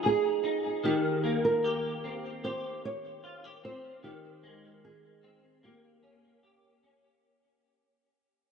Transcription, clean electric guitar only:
Already playing: F3 C4 D#4
0.03 G#4
0.44 D#4
0.84 D#3
1.24 A#3
1.64 G4
2.04 C4
2.44 G4
3.24 F4
3.44 G4
3.64 C4
4.03 D#3
4.43 G#3
5.23 C4
5.63 A#3
6.03 C#4
6.43 G4
6.83 C#4

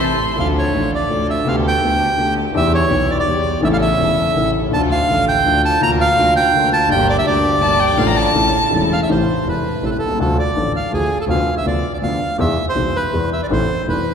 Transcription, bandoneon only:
0.40 F5
0.58 C#5
0.95 D5
1.30 E5
1.48 F5
1.68 G5
2.57 E5
2.75 C#5
3.11 D5
3.19 D5
3.64 E5
3.73 F5
3.82 E5
4.74 A5
4.91 F5
5.28 G5
5.65 A5
5.83 A#5
6.01 F5
6.36 G5
6.73 A5
6.91 G5
7.10 D5
7.18 E5
7.27 D5
8.93 F5
9.03 E5
9.11 C5
9.49 B4
9.85 A4
9.91 B4
9.99 A4
10.21 A4
10.39 D5
10.76 F5
10.94 G#4
11.21 A4
11.30 F5
11.57 E5
11.67 D5
11.94 D5
12.03 F5
12.40 E5
12.69 C5
12.96 B4
13.33 E5
13.43 D5
13.53 C5
13.89 B4

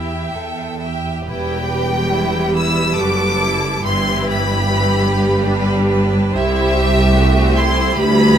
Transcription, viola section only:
Already playing: E4
1.26 G3 E4
1.71 G4
2.98 F#4
3.42 E4
3.83 E3 E4
4.66 E3 G4
5.08 G3
5.48 D4
6.32 G3 E4
6.73 G4
7.14 A3 F#4
7.54 E4
7.95 G3 G4

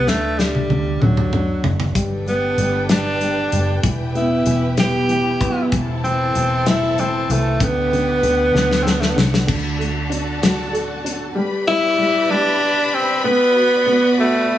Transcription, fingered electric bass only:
0.06 D2
0.69 D2
1.01 D2
1.63 F#1
1.95 G1
2.57 G1
3.52 F#1
3.83 E1
4.46 E1
5.40 F#1
5.72 E1
6.35 E1
7.29 C2
7.60 D2
8.23 D2
8.53 D2
9.16 C2
9.48 D2

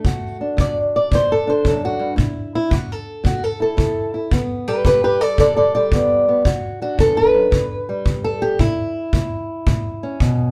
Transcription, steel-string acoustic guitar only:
Already playing: A3
0.06 D2 F#4
0.41 D4
0.57 D2 D5
0.96 D5
1.11 D2 C5
1.32 A4
1.47 D4 C5
1.64 F#2 A4
1.85 F#4
1.99 G2
2.16 A2 E4
2.55 E4
2.71 A2 F#4
2.92 A4
3.24 A2 F#4
3.44 A4
3.60 E4 A4
3.77 A2 E4
4.14 E4
4.31 D2 B3
4.68 G3 G4 B4
4.86 D2 G4 B4
5.04 G4 B4
5.21 A4 D5
5.38 D2 A4 D5
5.57 A4 D5
5.75 G3 D5
5.92 D2 B3
6.28 B3
6.45 D2 F#4
6.82 D4 F#4
6.98 E2 A4
7.17 B4
7.34 F#2
7.51 G2
7.89 G3
8.05 G2
8.24 A4
8.42 G4
8.60 A2 E4
9.13 A2
9.67 A2
10.03 C#4
10.21 B2

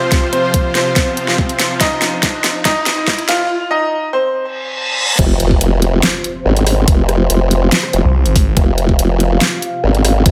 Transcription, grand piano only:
Already playing: C4 C5
0.33 C4 C5
0.75 C4 C5
1.81 D#4 D#5
2.65 D#4 D#5
3.28 F4 F5
3.71 D#4 D#5
4.13 C4 C5

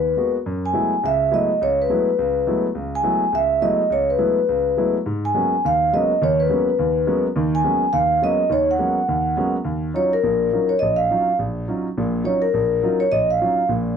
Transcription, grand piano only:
Already playing: D#2
0.17 G#3 A#3 B3 F#4
0.46 F#2
0.73 F#3 G#3 A3 B3 E4
1.03 C#2 C#3
1.31 F#3 G#3 A3 B3 E4
1.61 C#2
1.89 F#3 G#3 A3 B3 E4
2.19 C#2
2.47 F#3 G#3 A3 B3 E4
2.75 C#2
3.03 F#3 G#3 A3 B3 E4
3.32 C#2
3.61 F#3 G#3 A3 B3 E4
3.90 C#2
4.18 F#3 G#3 A3 B3 E4
4.49 C#2
4.77 F#3 G#3 A3 B3 E4
5.06 G#2
5.34 F#3 G#3 A#3 B3 C#4
5.65 D#2
5.93 F#3 G#3 A#3 B3 C#4
6.21 D#2 D#3
6.49 F#3 G#3 A#3 B3 C#4
6.79 D#2
7.07 F#3 G#3 A#3 B3 C#4
7.36 D#2 D#3
7.64 F#3 G#3 A#3 B3 C#4
7.93 D#2
8.22 F#3 G#3 A#3 B3 C#4
8.50 D#2 D#3
8.79 F#3 G#3 A#3 B3 C#4
9.08 D#2
9.37 F#3 G#3 A#3 B3 C#4
9.64 D#2
9.94 F#3 C#4 D#4 F4
10.24 A#1 A#2
10.53 F#3 C#4 D#4 F4
10.82 A#1
11.10 F#3 C#4 D#4 F4
11.39 A#1
11.68 F#3 C#4 D#4 F4
11.98 A#1 A#2
12.24 F#3 C#4 D#4 F4
12.54 A#1
12.82 F#3 C#4 D#4 F4
13.12 A#1
13.41 F#3 C#4 D#4 F4
13.69 A#1 A#2

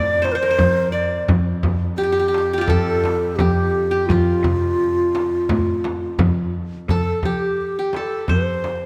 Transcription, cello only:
Already playing: A2
0.59 F2
1.29 F2
1.65 F3
2.70 F2
3.39 F2
4.09 F2
4.43 C3
5.49 A2
6.19 F2
6.89 F2
7.24 F3
8.29 F2

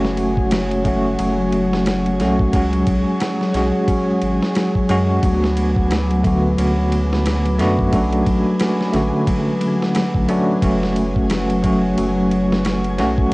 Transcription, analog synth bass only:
Already playing: F#1
1.19 F#1
2.20 B1
2.53 C#2
2.87 B1
3.55 B1
4.23 G#1
4.90 F#2
5.23 D2
6.58 D2
7.59 F#2
7.93 B1
8.27 A1
8.94 A1
10.15 B1
10.63 F#1
11.98 F#1
12.99 B1

